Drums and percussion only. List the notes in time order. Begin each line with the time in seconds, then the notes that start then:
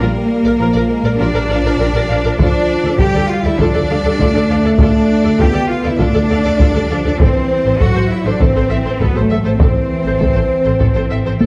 2.39 taiko
2.99 taiko
3.58 taiko
4.19 taiko
4.79 taiko
5.39 taiko
5.99 taiko
6.60 taiko
7.20 taiko
7.80 taiko
8.40 taiko
9.00 taiko
9.60 taiko
10.20 taiko
10.80 taiko
11.41 taiko high